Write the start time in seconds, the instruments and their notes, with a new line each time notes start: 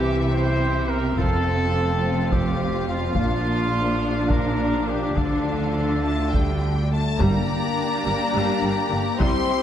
Already playing: double bass section C2, cello section C3, french horn section E3 E4, viola section C4, trumpet section G4, violin section G4 E5
0.33 trumpet section C5
0.89 trumpet section A#4
1.16 double bass section F1, cello section F2, french horn section F3 C4, violin section F4 F5, trumpet section A4, taiko
2.31 trumpet section G4, taiko
2.88 trumpet section F4
3.16 double bass section A#1, cello section A#2, french horn section D4, viola section D4, trumpet section F4, taiko
4.30 trumpet section A#4, taiko
4.89 trumpet section G4
5.15 double bass section D2, cello section D3, french horn section F3, violin section F4 F5, trumpet section A4, taiko
6.03 french horn section A3, violin section A5
6.32 french horn section G3, violin section G5, taiko
6.92 french horn section A3, violin section A5
7.18 double bass section G1, cello section G2, timpani G2, trombone section G3 D4, viola section G3 D4, french horn section A#3, violin section G4 D5 A#5, taiko
8.05 double bass section G1, cello section G2, viola section G3
8.34 double bass section G1, cello section G2, viola section G3
8.63 double bass section G1, cello section G2, viola section G3
8.92 double bass section G1, cello section G2, viola section D3
9.19 double bass section C2, cello section C3, trombone section G3 E4, viola section G3 E4, french horn section C4, violin section C5 C6, taiko